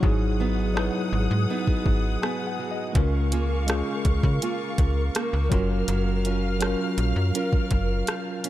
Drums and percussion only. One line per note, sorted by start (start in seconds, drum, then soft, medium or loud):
0.03 kick loud
0.77 cross-stick loud
1.67 kick medium
1.86 kick medium
2.23 cross-stick loud
2.95 kick loud
2.95 closed hi-hat medium
3.32 closed hi-hat medium
3.68 cross-stick loud
3.68 closed hi-hat medium
4.05 kick medium
4.05 closed hi-hat medium
4.23 kick medium
4.42 closed hi-hat medium
4.78 kick medium
4.78 closed hi-hat medium
5.15 cross-stick loud
5.15 closed hi-hat medium
5.52 kick loud
5.52 closed hi-hat medium
5.88 closed hi-hat medium
6.25 closed hi-hat medium
6.61 cross-stick loud
6.61 closed hi-hat medium
6.98 closed hi-hat medium
7.35 closed hi-hat medium
7.53 kick medium
7.71 kick medium
7.71 closed hi-hat medium
8.07 cross-stick loud
8.07 closed hi-hat medium
8.44 closed hi-hat medium